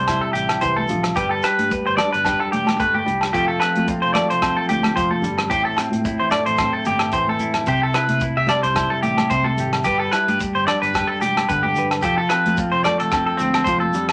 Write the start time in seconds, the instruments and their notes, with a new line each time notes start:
Already playing: fingered electric bass C2, clean electric guitar C3 G3 G4 C5
0.07 clean electric guitar E4, kick, cross-stick, closed hi-hat, low conga, low agogo, shekere
0.21 clean electric guitar A4
0.33 fingered electric bass A1, clean electric guitar G4, closed hi-hat, shekere
0.49 cross-stick, closed hi-hat, low agogo
0.61 fingered electric bass C2, clean electric guitar E3 C5, kick, closed hi-hat, shekere
0.76 clean electric guitar A4, high conga
0.88 fingered electric bass A1, clean electric guitar F3, closed hi-hat, low conga, shekere
1.03 cross-stick, closed hi-hat, low agogo
1.15 fingered electric bass G1, clean electric guitar G3 G4 B4, kick, closed hi-hat, shekere
1.31 clean electric guitar A4
1.43 clean electric guitar G4 B4, cross-stick, closed hi-hat, low agogo, shekere
1.58 fingered electric bass G2, closed hi-hat, high conga
1.71 clean electric guitar B4, kick, closed hi-hat, shekere
1.86 fingered electric bass G1, clean electric guitar C5
1.97 clean electric guitar D4 D5, cross-stick, closed hi-hat, high conga, low conga, low agogo, shekere
2.13 fingered electric bass G1, clean electric guitar B4, closed hi-hat
2.25 clean electric guitar G4, kick, cross-stick, closed hi-hat, low conga, low agogo, shekere
2.40 clean electric guitar A4
2.52 fingered electric bass E1, clean electric guitar G4, closed hi-hat, high conga
2.66 cross-stick, closed hi-hat, high conga, low agogo
2.79 fingered electric bass G1, clean electric guitar A3 B4, kick, closed hi-hat, shekere
2.94 clean electric guitar G4, high conga
3.06 fingered electric bass C2, clean electric guitar G3, closed hi-hat, low conga
3.21 cross-stick, closed hi-hat, low agogo
3.33 fingered electric bass F1, clean electric guitar F3 A3 C4 F4 G4 A4, kick, closed hi-hat, shekere
3.48 clean electric guitar A4
3.60 clean electric guitar C4 B4, cross-stick, closed hi-hat, low agogo, shekere
3.76 fingered electric bass F2, closed hi-hat, high conga
3.88 clean electric guitar F4, kick, closed hi-hat, shekere
4.02 fingered electric bass F1, clean electric guitar C5
4.14 clean electric guitar A3 D5, cross-stick, closed hi-hat, high conga, low conga, low agogo, shekere
4.30 fingered electric bass F1, clean electric guitar C5, closed hi-hat
4.42 clean electric guitar C4, kick, cross-stick, closed hi-hat, low conga, low agogo, shekere
4.57 clean electric guitar A4
4.69 fingered electric bass D2, clean electric guitar G4, closed hi-hat, high conga, shekere
4.83 cross-stick, closed hi-hat, high conga, low agogo
4.96 fingered electric bass F1, clean electric guitar F3 C5, kick, closed hi-hat, shekere
5.10 clean electric guitar A4, high conga
5.22 fingered electric bass G1, clean electric guitar G3, closed hi-hat, low conga, shekere
5.38 cross-stick, closed hi-hat, low agogo
5.50 fingered electric bass A1, clean electric guitar A2 G4 C5, kick, closed hi-hat, shekere
5.65 clean electric guitar A4
5.77 clean electric guitar C4, muted clean electric guitar stroke, cross-stick, closed hi-hat, low agogo, shekere
5.90 fingered electric bass A2, closed hi-hat, high conga
6.05 clean electric guitar E4, kick, closed hi-hat, shekere
6.20 fingered electric bass A1, clean electric guitar C5
6.31 clean electric guitar A3 D5, cross-stick, closed hi-hat, low conga, low agogo, shekere
6.46 fingered electric bass A1, clean electric guitar C5, closed hi-hat
6.58 clean electric guitar C4, kick, cross-stick, closed hi-hat, low conga, low agogo, shekere
6.73 clean electric guitar A4
6.85 fingered electric bass G1, clean electric guitar G4, closed hi-hat, high conga, shekere
6.99 cross-stick, closed hi-hat, low agogo
7.12 fingered electric bass A1, clean electric guitar E3 C5, kick, closed hi-hat, shekere
7.27 clean electric guitar A4, high conga
7.39 fingered electric bass A2, clean electric guitar E4, closed hi-hat, low conga, shekere
7.54 cross-stick, closed hi-hat, low conga, low agogo
7.66 fingered electric bass C2, clean electric guitar C3 G4 C5, kick, closed hi-hat, shekere
7.83 clean electric guitar A4
7.94 clean electric guitar E4 B4, cross-stick, closed hi-hat, low agogo, shekere
8.08 fingered electric bass C3, closed hi-hat, high conga
8.20 clean electric guitar E4, kick, closed hi-hat, shekere
8.37 fingered electric bass C2, clean electric guitar G4 E5
8.47 clean electric guitar G3 D5, cross-stick, closed hi-hat, high conga, low conga, low agogo, shekere
8.63 fingered electric bass C2, clean electric guitar C5, closed hi-hat
8.74 clean electric guitar E4, kick, cross-stick, closed hi-hat, low conga, low agogo, shekere
8.90 clean electric guitar A4
9.02 fingered electric bass A1, clean electric guitar G4, closed hi-hat, high conga, shekere
9.17 cross-stick, closed hi-hat, high conga, low agogo
9.30 fingered electric bass C2, clean electric guitar C3 C5, kick, closed hi-hat, shekere
9.44 clean electric guitar A4, high conga
9.57 fingered electric bass G#1, clean electric guitar G4, closed hi-hat, low conga, shekere
9.73 cross-stick, closed hi-hat, low agogo
9.84 fingered electric bass G1, clean electric guitar G3 G4 B4, kick, closed hi-hat, shekere
9.99 clean electric guitar A4
10.11 clean electric guitar E4 B4, cross-stick, closed hi-hat, low agogo, shekere
10.28 fingered electric bass G2, clean electric guitar G4, closed hi-hat, high conga
10.40 muted clean electric guitar stroke, kick, closed hi-hat, shekere
10.55 fingered electric bass G1, clean electric guitar C5
10.67 clean electric guitar D4 D5, cross-stick, closed hi-hat, low conga, low agogo, shekere
10.82 fingered electric bass G1, clean electric guitar B4, closed hi-hat
10.94 clean electric guitar G4, kick, cross-stick, closed hi-hat, low conga, low agogo, shekere
11.07 clean electric guitar A4
11.21 fingered electric bass E1, clean electric guitar G4, closed hi-hat, high conga, shekere
11.37 cross-stick, closed hi-hat, high conga, low agogo
11.49 fingered electric bass G1, clean electric guitar D3 B4, kick, closed hi-hat, shekere
11.63 clean electric guitar G4, high conga
11.75 fingered electric bass G2, clean electric guitar B4, closed hi-hat, low conga, shekere
11.91 cross-stick, closed hi-hat, low agogo
12.02 fingered electric bass F1, clean electric guitar F3 G4 A4, kick, closed hi-hat, shekere
12.18 clean electric guitar A4
12.29 clean electric guitar C4 B4, cross-stick, closed hi-hat, low agogo, shekere
12.46 fingered electric bass F2, closed hi-hat, high conga
12.57 clean electric guitar F4, kick, closed hi-hat, shekere
12.72 fingered electric bass F1, clean electric guitar C5
12.84 clean electric guitar A3 D5, cross-stick, closed hi-hat, high conga, low conga, low agogo, shekere
13.00 fingered electric bass F1, clean electric guitar A4, closed hi-hat
13.12 clean electric guitar C4, kick, cross-stick, closed hi-hat, low conga, low agogo, shekere
13.26 clean electric guitar A4
13.37 fingered electric bass D2, clean electric guitar C4, closed hi-hat, high conga, shekere
13.54 cross-stick, closed hi-hat, high conga, low agogo
13.64 fingered electric bass F1, clean electric guitar F3 C5, kick, closed hi-hat, shekere
13.80 clean electric guitar A4, high conga
13.93 fingered electric bass F2, clean electric guitar G3, closed hi-hat, low conga, shekere
14.09 cross-stick, closed hi-hat, low agogo